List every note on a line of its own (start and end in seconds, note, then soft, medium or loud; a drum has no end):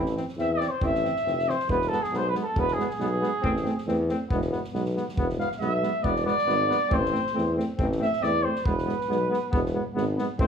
0.00 0.18 A1 loud
0.00 0.13 E4 medium
0.05 snare soft
0.16 0.25 E3 medium
0.16 0.24 C4 medium
0.16 snare soft
0.28 snare soft
0.37 0.61 E2 medium
0.37 0.47 E3 medium
0.37 0.47 C4 medium
0.37 0.52 E5 medium
0.37 snare soft
0.53 0.71 D5 medium
0.59 0.70 E3 medium
0.59 0.68 C4 medium
0.59 snare soft
0.69 0.86 C5 medium
0.81 1.06 A1 medium
0.81 0.92 E3 medium
0.81 0.90 C4 medium
0.81 1.51 E5 loud
0.81 kick medium
0.94 snare soft
1.03 1.13 E3 medium
1.03 1.12 C4 medium
1.03 snare soft
1.16 snare soft
1.25 1.49 F1 medium
1.25 1.35 E3 medium
1.25 1.34 C4 medium
1.25 snare soft
1.39 snare soft
1.47 1.56 E3 medium
1.47 1.56 C4 medium
1.47 1.70 C5 medium
1.47 snare soft
1.59 snare soft
1.68 1.92 E1 loud
1.68 1.78 G#3 medium
1.68 1.78 B3 medium
1.68 1.90 B4 medium
1.68 kick medium
1.81 snare soft
1.88 2.00 G#3 medium
1.88 2.00 B3 medium
1.88 2.03 A4 medium
1.88 snare soft
2.02 2.18 G#4 medium
2.02 snare soft
2.12 2.36 B1 medium
2.12 2.23 G#3 medium
2.12 2.22 B3 medium
2.12 2.28 C5 medium
2.12 snare soft
2.29 2.35 B4 medium
2.34 2.45 G#3 medium
2.34 2.42 B3 medium
2.34 snare soft
2.43 2.60 A4 medium
2.55 2.79 E1 medium
2.55 2.65 G#3 medium
2.55 2.66 B3 medium
2.55 kick loud
2.59 2.75 B4 medium
2.68 snare soft
2.73 2.86 G#4 medium
2.78 2.87 G#3 medium
2.78 2.87 B3 medium
2.78 snare soft
2.88 3.92 G#4 medium
2.88 snare soft
2.99 3.24 B1 loud
2.99 3.08 G#3 medium
2.99 3.09 B3 medium
2.99 snare soft
3.21 3.30 G#3 medium
3.21 3.30 B3 medium
3.21 snare soft
3.42 3.67 A1 medium
3.42 3.52 A3 medium
3.42 3.51 C4 medium
3.42 kick medium
3.56 snare soft
3.63 3.74 A3 medium
3.63 3.72 C4 medium
3.63 snare soft
3.78 snare soft
3.87 4.11 E2 medium
3.87 3.96 A3 medium
3.87 3.96 C4 medium
3.87 snare soft
4.09 4.18 A3 medium
4.09 4.18 C4 medium
4.09 snare soft
4.30 4.55 E1 loud
4.30 4.40 G#3 medium
4.30 4.38 B3 medium
4.30 kick medium
4.41 snare soft
4.51 4.61 G#3 medium
4.51 4.60 B3 medium
4.51 snare soft
4.64 snare soft
4.73 4.98 B1 medium
4.73 4.83 G#3 medium
4.73 4.82 B3 medium
4.73 snare soft
4.85 snare soft
4.95 5.04 G#3 medium
4.95 5.04 B3 medium
4.95 snare soft
5.08 snare soft
5.16 5.42 E1 medium
5.16 5.25 G#3 medium
5.16 5.26 B3 medium
5.16 kick loud
5.29 snare soft
5.37 5.46 G#3 medium
5.37 5.48 B3 medium
5.37 5.49 F5 medium
5.37 snare soft
5.51 snare soft
5.59 5.85 B1 medium
5.59 5.69 G#3 medium
5.59 5.70 B3 medium
5.59 6.05 E5 loud
5.59 snare soft
5.82 5.91 G#3 medium
5.82 5.91 B3 medium
5.82 snare soft
6.03 6.29 E1 medium
6.03 6.12 G#3 medium
6.03 6.12 B3 medium
6.03 6.26 D5 medium
6.03 kick medium
6.16 snare soft
6.25 6.35 G#3 medium
6.25 6.34 B3 medium
6.25 6.95 D5 loud
6.25 snare soft
6.38 snare soft
6.46 6.71 G#1 medium
6.46 6.57 G#3 medium
6.46 6.55 B3 medium
6.46 snare soft
6.68 6.77 G#3 medium
6.68 6.77 B3 medium
6.68 snare soft
6.89 7.15 A1 medium
6.89 6.99 A3 medium
6.89 6.98 C4 medium
6.89 kick loud
6.94 7.58 C5 medium
7.05 snare soft
7.11 7.20 A3 medium
7.11 7.20 C4 medium
7.11 snare soft
7.26 snare soft
7.34 7.59 E2 medium
7.34 7.43 A3 medium
7.34 7.43 C4 medium
7.34 snare soft
7.56 7.65 A3 medium
7.56 7.64 C4 medium
7.56 snare soft
7.77 8.03 A1 loud
7.77 7.87 A3 medium
7.77 7.86 C4 medium
7.77 kick loud
7.92 snare soft
7.98 8.09 A3 medium
7.98 8.07 C4 medium
7.98 snare soft
8.02 8.25 E5 loud
8.13 snare soft
8.20 8.47 E2 medium
8.20 8.31 A3 medium
8.20 8.29 C4 medium
8.20 8.45 D5 loud
8.20 snare soft
8.42 8.54 A3 medium
8.42 8.51 C4 medium
8.42 8.66 C5 medium
8.55 snare soft
8.64 8.90 E1 medium
8.64 8.74 G#3 medium
8.64 8.74 B3 medium
8.64 9.73 B4 medium
8.64 kick loud
8.78 snare soft
8.85 8.96 G#3 medium
8.85 8.94 B3 medium
8.85 snare soft
9.01 snare soft
9.08 9.33 B1 medium
9.08 9.18 G#3 medium
9.08 9.17 B3 medium
9.08 snare soft
9.30 9.39 G#3 medium
9.30 9.38 B3 medium
9.30 snare soft
9.51 9.76 E1 loud
9.51 9.61 G#3 medium
9.51 9.60 B3 medium
9.51 kick loud
9.65 snare soft
9.73 9.83 G#3 medium
9.73 9.82 B3 medium
9.94 10.19 G#1 loud
9.94 10.04 G#3 medium
9.94 10.03 B3 medium
9.94 snare soft
10.17 10.27 G#3 medium
10.17 10.26 B3 medium
10.17 snare soft
10.38 10.47 A1 loud
10.38 10.47 A3 medium
10.38 10.47 C4 medium
10.38 10.47 C5 medium
10.38 kick loud